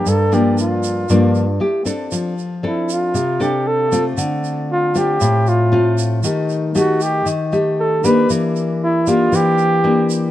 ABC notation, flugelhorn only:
X:1
M:4/4
L:1/16
Q:1/4=117
K:Gdor
V:1 name="Flugelhorn"
A2 G2 F8 z4 | [K:F] z4 E2 F4 G2 A3 z | z4 F2 G4 F4 z2 | z4 ^F2 G2 z4 A2 =B2 |
z4 E2 F2 G6 z2 |]